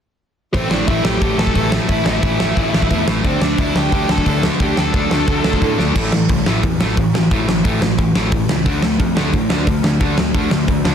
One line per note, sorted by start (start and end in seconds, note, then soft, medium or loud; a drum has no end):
0.54 0.66 A1 loud
0.54 0.72 A2 medium
0.54 0.72 E3 medium
0.54 0.70 A3 loud
0.54 0.70 C4 medium
0.54 0.71 C5 medium
0.54 kick loud
0.54 open hi-hat medium
0.71 0.82 A1 medium
0.71 0.88 A2 medium
0.71 0.88 E3 medium
0.71 0.89 A3 medium
0.71 0.87 D4 medium
0.71 0.87 D5 medium
0.71 snare loud
0.87 1.00 A1 medium
0.87 1.05 A2 medium
0.87 1.05 E3 medium
0.87 1.04 A3 medium
0.87 1.04 E4 medium
0.87 1.04 E5 medium
0.87 kick loud
0.87 open hi-hat medium
1.04 1.16 A1 medium
1.04 1.19 A2 medium
1.04 1.20 E3 medium
1.04 1.22 A3 loud
1.04 1.36 G4 medium
1.04 1.39 G5 loud
1.04 snare loud
1.21 1.33 A1 medium
1.21 1.38 A2 medium
1.21 1.38 E3 medium
1.21 1.38 A3 medium
1.21 kick loud
1.21 open hi-hat medium
1.37 1.49 A1 medium
1.37 1.53 A2 medium
1.37 1.54 E3 medium
1.37 1.55 A3 loud
1.37 1.70 A4 medium
1.37 1.70 A5 loud
1.37 snare loud
1.47 kick medium
1.54 1.79 A1 medium
1.54 1.70 A2 medium
1.54 1.70 E3 medium
1.54 1.70 A3 loud
1.54 kick loud
1.54 open hi-hat medium
1.71 1.87 A2 medium
1.71 1.87 E3 medium
1.71 1.89 A3 medium
1.71 snare loud
1.88 2.01 A1 medium
1.88 2.04 A2 loud
1.88 2.04 E3 loud
1.88 2.04 A3 loud
1.88 2.05 E4 medium
1.88 2.05 E5 loud
1.88 kick loud
1.88 open hi-hat medium
2.04 2.17 A1 medium
2.04 2.21 A2 medium
2.04 2.22 E3 medium
2.04 2.23 A3 medium
2.04 3.05 E4 medium
2.04 3.04 E5 medium
2.04 snare loud
2.22 2.35 A1 medium
2.22 2.39 A2 medium
2.22 2.39 E3 medium
2.22 2.39 A3 medium
2.22 kick loud
2.22 open hi-hat medium
2.39 2.52 A1 medium
2.39 2.55 A2 medium
2.39 2.56 E3 medium
2.39 2.57 A3 loud
2.39 snare loud
2.57 2.69 A1 medium
2.57 2.73 A2 medium
2.57 2.72 E3 medium
2.57 2.72 A3 medium
2.57 kick loud
2.57 open hi-hat soft
2.73 2.86 A1 medium
2.73 2.90 A2 medium
2.73 2.90 E3 medium
2.73 2.91 A3 medium
2.73 snare loud
2.82 kick medium
2.91 3.02 E2 medium
2.91 3.08 A2 loud
2.91 3.08 E3 medium
2.91 3.07 A3 loud
2.91 kick loud
2.91 open hi-hat medium
3.08 3.19 A1 medium
3.08 3.23 A2 medium
3.08 3.24 E3 medium
3.08 3.25 A3 medium
3.08 snare loud
3.24 3.36 D2 medium
3.24 3.43 D3 loud
3.24 3.42 A3 loud
3.24 3.41 C4 medium
3.24 3.41 D4 loud
3.24 3.42 C5 medium
3.24 kick loud
3.24 open hi-hat medium
3.41 3.53 D2 medium
3.41 3.58 D3 medium
3.41 3.59 A3 medium
3.41 3.59 D4 medium
3.41 3.58 D4 medium
3.41 3.59 D5 medium
3.41 snare loud
3.58 3.70 D2 medium
3.58 3.76 D3 medium
3.58 3.75 A3 medium
3.58 3.75 D4 loud
3.58 3.75 E4 medium
3.58 3.75 E5 medium
3.58 kick loud
3.58 open hi-hat medium
3.75 3.87 D2 medium
3.75 3.91 D3 medium
3.75 3.92 A3 medium
3.75 3.92 D4 loud
3.75 4.08 G4 medium
3.75 4.11 G5 medium
3.75 snare loud
3.92 4.04 D2 medium
3.92 4.09 D3 medium
3.92 4.09 A3 medium
3.92 4.07 D4 medium
3.92 kick loud
3.92 open hi-hat medium
4.08 4.21 D2 medium
4.08 4.24 D3 medium
4.08 4.26 A3 medium
4.08 4.25 D4 loud
4.08 4.42 A4 medium
4.08 4.42 A5 medium
4.08 snare loud
4.18 kick medium
4.25 4.49 D2 medium
4.25 4.43 D3 medium
4.25 4.44 A3 loud
4.25 4.42 D4 loud
4.25 kick loud
4.25 open hi-hat medium
4.43 4.58 D3 medium
4.43 4.59 A3 medium
4.43 4.59 D4 medium
4.43 snare loud
4.59 4.72 D2 medium
4.59 4.76 D3 medium
4.59 4.75 A3 medium
4.59 4.75 D4 loud
4.59 4.77 G4 medium
4.59 4.79 G5 medium
4.59 kick loud
4.59 open hi-hat medium
4.76 4.89 D2 medium
4.76 4.91 D3 medium
4.76 4.92 A3 medium
4.76 4.93 D4 medium
4.76 5.76 A4 medium
4.76 snare loud
4.80 5.76 A5 medium
4.92 5.06 D2 medium
4.92 5.10 D3 medium
4.92 5.10 A3 medium
4.92 5.09 D4 medium
4.92 kick loud
4.92 open hi-hat medium
5.11 5.23 D2 medium
5.11 5.26 D3 medium
5.11 5.26 A3 medium
5.11 5.27 D4 loud
5.11 snare loud
5.27 5.39 D2 medium
5.27 5.44 D3 medium
5.27 5.44 A3 medium
5.27 5.43 D4 medium
5.27 kick loud
5.27 open hi-hat medium
5.44 5.57 D2 medium
5.44 5.60 D3 medium
5.44 5.61 A3 medium
5.44 5.61 D4 medium
5.44 snare loud
5.53 kick medium
5.61 5.73 A2 medium
5.61 5.78 D3 medium
5.61 5.77 A3 medium
5.61 5.76 D4 loud
5.61 kick medium
5.61 open hi-hat medium
5.78 5.91 D2 medium
5.78 5.94 D3 medium
5.78 5.95 A3 medium
5.78 5.94 D4 medium
5.78 snare medium
5.95 6.12 A1 medium
5.95 6.11 A2 medium
5.95 6.12 E3 medium
5.95 6.12 A3 loud
5.95 kick loud
5.95 crash loud
6.12 6.29 A1 medium
6.12 6.28 A2 medium
6.12 6.28 E3 medium
6.12 snare loud
6.29 6.46 C2 medium
6.29 6.45 A2 medium
6.29 6.45 E3 medium
6.29 kick loud
6.29 open hi-hat medium
6.46 6.63 A1 medium
6.46 6.62 A2 medium
6.46 6.63 E3 medium
6.46 6.63 A3 loud
6.46 snare loud
6.63 6.80 E2 medium
6.63 6.79 A2 medium
6.63 6.79 E3 medium
6.63 kick loud
6.63 open hi-hat medium
6.80 6.97 A1 medium
6.80 6.95 A2 loud
6.80 6.95 E3 loud
6.80 6.97 A3 loud
6.80 snare loud
6.96 7.13 A1 loud
6.96 7.12 A2 medium
6.96 7.12 E3 medium
6.96 kick loud
6.96 open hi-hat medium
7.14 7.30 A1 medium
7.14 7.29 A2 medium
7.14 7.30 E3 medium
7.14 snare loud
7.31 7.47 A1 medium
7.31 7.47 A2 medium
7.31 7.47 E3 medium
7.31 7.48 A3 loud
7.31 kick loud
7.31 open hi-hat medium
7.48 7.64 A1 medium
7.48 7.63 A2 medium
7.48 7.64 E3 medium
7.48 snare loud
7.64 7.80 A1 medium
7.64 7.80 A2 medium
7.64 7.81 E3 medium
7.64 7.81 A3 medium
7.64 kick loud
7.64 open hi-hat medium
7.81 7.97 A1 medium
7.81 7.97 A2 medium
7.81 7.97 E3 medium
7.81 snare loud
7.98 8.14 A1 medium
7.98 8.14 A2 medium
7.98 8.14 E3 medium
7.98 kick loud
7.98 open hi-hat medium
8.15 8.31 A1 medium
8.15 8.31 A2 medium
8.15 8.31 E3 loud
8.15 8.31 A3 loud
8.15 snare loud
8.32 8.48 A1 medium
8.32 8.48 A2 medium
8.32 8.48 E3 medium
8.32 kick loud
8.32 open hi-hat medium
8.49 8.65 C#2 medium
8.49 8.64 A2 medium
8.49 8.65 E3 medium
8.49 snare loud
8.66 8.82 D2 loud
8.66 8.82 D3 medium
8.66 8.82 A3 loud
8.66 8.82 D4 loud
8.66 kick loud
8.66 open hi-hat medium
8.82 8.99 D2 medium
8.82 8.98 D3 medium
8.82 8.98 A3 medium
8.82 snare loud
8.99 9.16 F2 medium
8.99 9.15 D3 medium
8.99 9.15 A3 medium
8.99 kick loud
8.99 open hi-hat medium
9.17 9.33 D2 medium
9.17 9.32 D3 medium
9.17 9.33 A3 medium
9.17 9.33 D4 loud
9.17 snare loud
9.33 9.49 A2 medium
9.33 9.49 D3 medium
9.33 9.49 A3 medium
9.33 kick loud
9.33 open hi-hat medium
9.50 9.66 D2 medium
9.50 9.66 D3 loud
9.50 9.66 A3 loud
9.50 9.67 D4 loud
9.50 snare loud
9.67 9.83 D2 medium
9.67 9.83 D3 medium
9.67 9.83 A3 medium
9.67 kick loud
9.67 open hi-hat medium
9.84 10.00 D2 medium
9.84 9.99 D3 medium
9.84 9.99 A3 medium
9.84 snare loud
10.00 10.17 D2 medium
10.00 10.16 D3 medium
10.00 10.17 A3 loud
10.00 10.17 D4 loud
10.00 kick loud
10.00 open hi-hat medium
10.18 10.34 D2 medium
10.18 10.33 D3 medium
10.18 10.33 A3 medium
10.18 snare loud
10.34 10.50 D2 medium
10.34 10.50 D3 medium
10.34 10.51 A3 loud
10.34 10.51 D4 loud
10.34 kick loud
10.34 open hi-hat medium
10.51 10.67 D2 medium
10.51 10.66 D3 medium
10.51 10.67 A3 medium
10.51 snare loud
10.68 10.84 D2 medium
10.68 10.83 D3 medium
10.68 10.84 A3 medium
10.68 kick loud
10.68 open hi-hat medium
10.84 10.95 D2 medium
10.84 10.95 D3 medium
10.84 10.95 A3 medium
10.84 10.95 D4 loud
10.84 snare loud